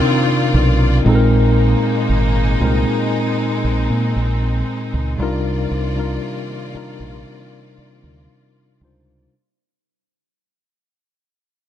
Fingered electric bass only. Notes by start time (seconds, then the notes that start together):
0.54 B1
1.06 A#1
2.09 G#1
2.61 C2
3.64 A#1
3.90 A#2
4.16 A#1
4.94 C#2
5.20 C2
5.71 C2
6.75 muted fingered electric bass stroke
7.00 A#1
7.78 muted fingered electric bass stroke
8.04 D2
8.81 C#2